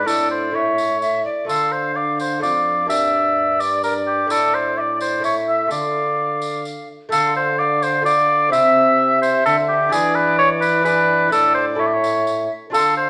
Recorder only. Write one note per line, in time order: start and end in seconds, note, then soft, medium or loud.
0.07 0.57 D5 medium
0.55 0.97 E5 medium
1.02 1.24 E5 medium
1.25 1.48 D5 medium
1.49 1.93 F5 medium
1.95 2.42 F5 medium
2.42 2.88 F5 medium
2.89 3.81 D5 medium
3.84 4.29 D5 medium
4.30 4.73 D5 medium
4.77 5.26 D5 medium
4.77 4.81 E5 soft
5.24 5.72 E5 medium
5.71 6.89 F5 medium
7.12 7.56 F5 medium
7.59 8.05 F5 medium
8.06 8.54 F5 medium
8.52 9.91 E5 medium
9.92 10.83 D5 medium
10.86 11.32 D5 medium
11.32 11.81 D5 medium
11.79 12.51 E5 medium
12.74 13.10 F5 medium